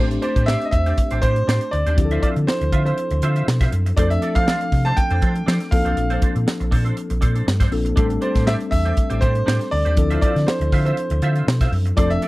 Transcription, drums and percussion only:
0.11 closed hi-hat
0.22 closed hi-hat
0.36 kick, closed hi-hat
0.48 snare
0.62 closed hi-hat
0.72 kick, closed hi-hat
0.86 closed hi-hat
0.98 kick, closed hi-hat
1.11 closed hi-hat
1.22 kick, closed hi-hat
1.36 closed hi-hat
1.49 snare
1.61 closed hi-hat
1.73 closed hi-hat
1.87 closed hi-hat
1.98 kick, closed hi-hat
2.11 closed hi-hat
2.23 kick, closed hi-hat
2.36 closed hi-hat
2.48 snare
2.61 closed hi-hat
2.72 kick, closed hi-hat
2.86 closed hi-hat
2.98 closed hi-hat
3.11 closed hi-hat
3.22 closed hi-hat
3.36 closed hi-hat
3.48 snare
3.61 kick, snare, closed hi-hat
3.72 closed hi-hat
3.86 closed hi-hat
3.97 kick, closed hi-hat
4.11 closed hi-hat
4.22 closed hi-hat
4.36 kick, closed hi-hat
4.48 snare
4.61 closed hi-hat
4.72 kick, open hi-hat
4.86 closed hi-hat
4.97 kick, closed hi-hat
5.10 closed hi-hat
5.22 kick, closed hi-hat
5.36 closed hi-hat
5.48 snare
5.60 snare, closed hi-hat
5.72 kick, open hi-hat
5.86 closed hi-hat
5.97 closed hi-hat
6.10 closed hi-hat
6.22 kick, closed hi-hat
6.36 closed hi-hat
6.48 snare
6.61 closed hi-hat
6.72 kick, open hi-hat
6.86 closed hi-hat
6.97 closed hi-hat
7.10 closed hi-hat
7.22 kick, closed hi-hat
7.36 closed hi-hat
7.48 snare
7.60 kick, snare, closed hi-hat
7.72 open hi-hat
7.86 closed hi-hat
7.97 kick, closed hi-hat
8.10 closed hi-hat
8.22 closed hi-hat
8.35 kick, snare, closed hi-hat
8.47 snare
8.60 closed hi-hat
8.72 kick, open hi-hat
8.86 closed hi-hat
8.97 kick, closed hi-hat
9.10 closed hi-hat
9.22 kick, closed hi-hat
9.35 closed hi-hat
9.48 snare
9.61 snare, closed hi-hat
9.72 open hi-hat
9.86 closed hi-hat
9.97 kick, closed hi-hat
10.11 closed hi-hat
10.22 kick, closed hi-hat
10.36 snare, closed hi-hat
10.48 snare
10.61 closed hi-hat
10.72 kick, open hi-hat
10.86 closed hi-hat
10.97 closed hi-hat
11.10 closed hi-hat
11.22 closed hi-hat
11.36 closed hi-hat
11.48 snare
11.61 kick, snare, closed hi-hat
11.73 open hi-hat
11.86 closed hi-hat
11.97 kick, closed hi-hat
12.11 closed hi-hat
12.22 closed hi-hat

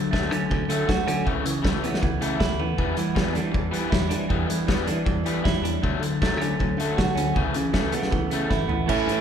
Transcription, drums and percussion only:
0.13 kick, snare
0.32 closed hi-hat
0.51 kick
0.70 closed hi-hat
0.89 kick, snare
1.08 closed hi-hat
1.27 kick
1.46 closed hi-hat
1.65 kick, snare
1.84 closed hi-hat
1.94 snare
2.03 kick
2.22 closed hi-hat
2.40 kick, snare
2.60 high tom
2.78 kick
2.97 closed hi-hat
3.16 kick, snare
3.35 closed hi-hat
3.54 kick
3.74 closed hi-hat
3.92 kick, snare
4.11 closed hi-hat
4.30 kick
4.50 closed hi-hat
4.68 kick, snare
4.87 closed hi-hat
5.06 kick
5.26 closed hi-hat
5.45 kick, snare
5.65 closed hi-hat
5.84 kick
6.03 closed hi-hat
6.22 kick, snare
6.41 closed hi-hat
6.60 kick
6.80 closed hi-hat
6.98 kick, snare
7.17 snare, closed hi-hat
7.36 kick
7.54 closed hi-hat
7.74 kick, snare
7.92 closed hi-hat
8.03 snare
8.12 kick
8.31 closed hi-hat
8.51 kick, snare
8.69 floor tom
8.89 kick, crash
9.09 closed hi-hat

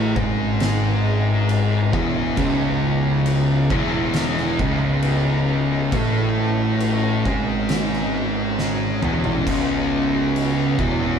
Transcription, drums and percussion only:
0.16 kick
0.60 snare, crash
1.49 crash
1.93 kick
2.37 kick, crash
3.26 crash
3.70 kick
4.14 snare, crash
4.38 snare
4.59 kick
5.03 crash
5.92 kick, crash
6.80 crash
7.25 kick
7.69 snare, crash
7.93 snare
8.59 snare
9.02 mid tom
9.24 floor tom
9.47 kick, splash, crash
10.36 crash
10.79 kick

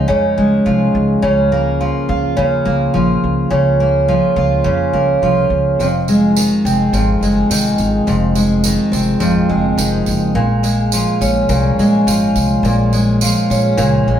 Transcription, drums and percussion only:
5.80 tambourine
6.08 tambourine
6.36 tambourine
6.66 tambourine
6.94 tambourine
7.23 tambourine
7.51 tambourine
7.78 tambourine
8.07 tambourine
8.35 tambourine
8.64 tambourine
8.93 tambourine
9.20 tambourine
9.78 tambourine
10.06 tambourine
10.64 tambourine
10.92 tambourine
11.22 tambourine
11.49 tambourine
11.79 tambourine
12.08 tambourine
12.36 tambourine
12.65 tambourine
12.93 tambourine
13.21 tambourine
13.51 tambourine
13.78 tambourine

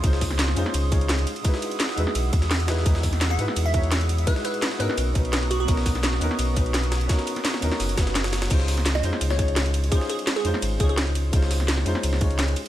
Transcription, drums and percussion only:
0.04 kick, closed hi-hat, ride
0.13 snare
0.21 kick, snare, closed hi-hat, open hi-hat
0.31 snare, ride
0.39 snare, closed hi-hat, ride
0.48 snare
0.56 closed hi-hat, ride
0.66 snare
0.74 closed hi-hat, ride
0.92 kick, closed hi-hat, ride
1.01 closed hi-hat
1.09 snare, closed hi-hat, ride
1.18 closed hi-hat, ride
1.27 closed hi-hat, ride
1.36 ride
1.45 kick, closed hi-hat, ride
1.54 snare
1.62 closed hi-hat, ride
1.71 ride
1.80 snare, closed hi-hat, ride
1.89 snare
1.98 closed hi-hat, ride
2.07 snare
2.15 closed hi-hat, ride
2.33 kick, closed hi-hat, ride
2.42 snare, closed hi-hat
2.51 snare, closed hi-hat, open hi-hat
2.60 closed hi-hat, ride
2.68 snare, closed hi-hat, ride
2.77 snare
2.86 kick, closed hi-hat, ride
2.95 snare
3.03 kick, snare, closed hi-hat, open hi-hat
3.13 snare, ride
3.21 snare, closed hi-hat, ride
3.30 snare
3.39 closed hi-hat, ride
3.48 snare
3.56 closed hi-hat, ride
3.74 kick, closed hi-hat, ride
3.83 closed hi-hat
3.91 snare, closed hi-hat, ride
4.01 closed hi-hat, ride
4.09 closed hi-hat, ride
4.18 ride
4.27 kick, closed hi-hat, ride
4.36 snare
4.45 closed hi-hat, ride
4.54 ride
4.62 snare, closed hi-hat, ride
4.71 snare
4.80 closed hi-hat, ride
4.89 snare
4.98 closed hi-hat, ride
5.15 kick, closed hi-hat, ride
5.25 closed hi-hat
5.33 snare, closed hi-hat, ride
5.43 closed hi-hat
5.51 closed hi-hat, ride
5.68 kick, closed hi-hat, ride
5.77 snare
5.86 kick, snare, closed hi-hat, open hi-hat
5.95 snare, ride
6.03 snare, closed hi-hat, ride
6.13 snare
6.21 closed hi-hat, ride
6.31 snare
6.39 closed hi-hat, ride
6.56 kick, closed hi-hat, ride
6.66 closed hi-hat
6.74 snare, closed hi-hat, ride
6.83 closed hi-hat, ride
6.92 snare, closed hi-hat, ride
7.01 ride
7.09 kick, snare, closed hi-hat, ride
7.19 snare, closed hi-hat
7.27 closed hi-hat, ride
7.36 snare, ride
7.45 snare, closed hi-hat, ride
7.54 snare
7.62 closed hi-hat, ride
7.72 snare
7.80 snare, closed hi-hat, open hi-hat
7.89 closed hi-hat, ride
7.98 kick, snare, closed hi-hat, ride
8.07 snare, closed hi-hat
8.15 snare, closed hi-hat, ride
8.24 snare, closed hi-hat, ride
8.33 snare, closed hi-hat, ride
8.42 snare, ride
8.50 kick, closed hi-hat, crash, ride
8.60 snare
8.68 snare, closed hi-hat, open hi-hat
8.77 snare, ride
8.86 snare, closed hi-hat, ride
8.95 snare
9.03 closed hi-hat, ride
9.13 snare
9.21 closed hi-hat, ride
9.30 snare
9.39 kick, closed hi-hat, ride
9.48 closed hi-hat
9.56 snare, closed hi-hat, ride
9.66 closed hi-hat, ride
9.74 closed hi-hat, ride
9.84 ride
9.92 kick, closed hi-hat, ride
10.01 snare
10.09 closed hi-hat, ride
10.19 ride
10.27 snare, closed hi-hat, ride
10.36 snare
10.45 closed hi-hat, ride
10.54 snare
10.62 closed hi-hat, ride
10.80 kick, closed hi-hat, ride
10.89 closed hi-hat
10.98 snare, closed hi-hat, ride
11.07 closed hi-hat
11.15 closed hi-hat, ride
11.33 kick, closed hi-hat, ride
11.43 snare
11.51 snare, closed hi-hat, open hi-hat
11.60 snare, ride
11.68 snare, closed hi-hat, ride
11.78 snare
11.86 closed hi-hat, ride
11.95 snare
12.03 closed hi-hat, ride
12.13 snare
12.21 kick, closed hi-hat, ride
12.31 closed hi-hat
12.39 snare, closed hi-hat, ride
12.48 closed hi-hat, ride
12.56 closed hi-hat, ride

